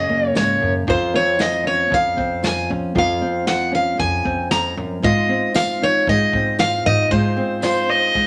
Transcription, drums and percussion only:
0.35 snare, tambourine
0.88 kick
1.39 snare, tambourine
1.92 kick
2.18 kick
2.44 snare, tambourine
2.96 kick
3.47 snare, tambourine
3.99 kick
4.25 kick
4.51 snare, tambourine
5.03 kick
5.54 snare, tambourine
6.07 kick
6.33 kick
6.59 snare, tambourine
7.11 kick
7.62 snare, tambourine
8.15 kick

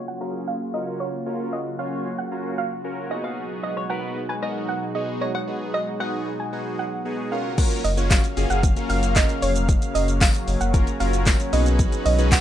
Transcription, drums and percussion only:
7.58 kick, closed hi-hat, crash, shaker
7.71 closed hi-hat, shaker
7.85 open hi-hat, shaker
7.97 closed hi-hat, shaker
8.11 kick, snare, clap, closed hi-hat, tambourine, shaker
8.24 closed hi-hat, shaker
8.37 open hi-hat, shaker
8.50 closed hi-hat, shaker
8.63 kick, closed hi-hat, shaker
8.77 closed hi-hat, shaker
8.90 open hi-hat, shaker
9.03 closed hi-hat, shaker
9.16 kick, snare, clap, closed hi-hat, tambourine, shaker
9.29 closed hi-hat, shaker
9.42 open hi-hat, shaker
9.56 closed hi-hat, shaker
9.69 kick, closed hi-hat, shaker
9.82 closed hi-hat, shaker
9.95 open hi-hat, shaker
10.08 closed hi-hat, shaker
10.21 kick, snare, clap, closed hi-hat, tambourine, shaker
10.34 closed hi-hat, shaker
10.48 open hi-hat, shaker
10.61 closed hi-hat, shaker
10.74 kick, closed hi-hat, shaker
10.87 closed hi-hat, shaker
11.00 open hi-hat, shaker
11.13 closed hi-hat, shaker
11.26 kick, snare, clap, closed hi-hat, tambourine, shaker
11.40 closed hi-hat, shaker
11.53 open hi-hat, shaker
11.66 closed hi-hat, shaker
11.79 kick, closed hi-hat, shaker
11.92 closed hi-hat, shaker
12.06 open hi-hat, shaker
12.19 closed hi-hat, shaker
12.32 kick, snare, clap, closed hi-hat, tambourine, shaker

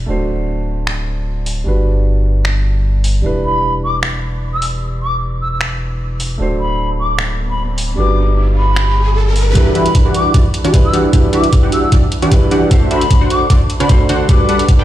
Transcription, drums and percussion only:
0.87 finger snap
1.46 open hi-hat
2.45 finger snap
3.04 open hi-hat
4.03 finger snap
4.62 open hi-hat
5.61 finger snap
6.20 open hi-hat
7.19 finger snap
7.78 open hi-hat
8.76 finger snap
9.36 open hi-hat
9.55 kick, closed hi-hat
9.75 closed hi-hat
9.86 closed hi-hat
9.95 kick, closed hi-hat
10.14 closed hi-hat
10.34 kick, closed hi-hat
10.54 closed hi-hat
10.65 closed hi-hat
10.74 kick, closed hi-hat
10.94 closed hi-hat
11.13 kick, closed hi-hat
11.33 closed hi-hat
11.44 closed hi-hat
11.53 kick, closed hi-hat
11.72 closed hi-hat
11.92 kick, closed hi-hat
12.12 closed hi-hat
12.22 closed hi-hat
12.32 kick, closed hi-hat
12.51 closed hi-hat
12.71 kick, closed hi-hat
12.91 closed hi-hat
13.01 closed hi-hat
13.11 kick, closed hi-hat
13.30 closed hi-hat
13.50 kick, closed hi-hat
13.70 closed hi-hat
13.80 closed hi-hat
13.89 kick, closed hi-hat
14.09 closed hi-hat
14.29 kick, closed hi-hat
14.49 closed hi-hat
14.59 closed hi-hat
14.68 kick, closed hi-hat

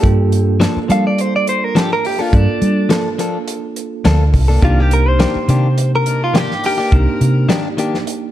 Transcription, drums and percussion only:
0.04 kick, closed hi-hat
0.32 closed hi-hat
0.61 snare, closed hi-hat
0.90 closed hi-hat
1.18 closed hi-hat
1.47 closed hi-hat
1.76 snare, closed hi-hat
2.05 open hi-hat
2.33 kick, closed hi-hat
2.62 closed hi-hat
2.90 snare, closed hi-hat
3.19 closed hi-hat
3.48 closed hi-hat
3.76 closed hi-hat
4.05 snare, closed hi-hat
4.34 kick, open hi-hat
4.62 kick, closed hi-hat
4.91 closed hi-hat
5.20 snare, closed hi-hat
5.49 closed hi-hat
5.78 closed hi-hat
6.06 closed hi-hat
6.35 snare, closed hi-hat
6.51 snare
6.64 open hi-hat
6.92 kick, closed hi-hat
7.21 closed hi-hat
7.49 snare, closed hi-hat
7.78 closed hi-hat
7.94 snare
8.07 closed hi-hat

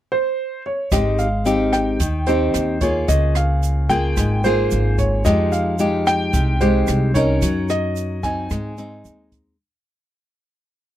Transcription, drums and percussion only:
0.92 kick, cross-stick, closed hi-hat, shaker
1.19 closed hi-hat, shaker
1.46 closed hi-hat, shaker
1.73 cross-stick, closed hi-hat, shaker
2.00 kick, closed hi-hat, shaker
2.26 closed hi-hat, shaker
2.54 cross-stick, closed hi-hat, shaker
2.81 kick, closed hi-hat, shaker
3.08 kick, closed hi-hat, shaker
3.35 cross-stick, closed hi-hat, shaker
3.63 closed hi-hat, shaker
3.90 kick, closed hi-hat, shaker
4.17 kick, cross-stick, closed hi-hat, shaker
4.44 closed hi-hat, shaker
4.71 closed hi-hat, shaker
4.98 kick, closed hi-hat, shaker
5.25 kick, cross-stick, closed hi-hat, shaker
5.52 closed hi-hat, shaker
5.79 closed hi-hat, shaker
6.07 cross-stick, closed hi-hat, shaker
6.34 kick, closed hi-hat, shaker
6.61 closed hi-hat, shaker
6.87 cross-stick, closed hi-hat, shaker
7.15 kick, closed hi-hat, shaker
7.42 kick, closed hi-hat, shaker
7.69 cross-stick, closed hi-hat, shaker
7.96 closed hi-hat, shaker
8.23 kick, closed hi-hat, shaker
8.50 kick, cross-stick, closed hi-hat, shaker
8.78 closed hi-hat, shaker
9.05 closed hi-hat, shaker
9.32 kick, closed hi-hat, shaker

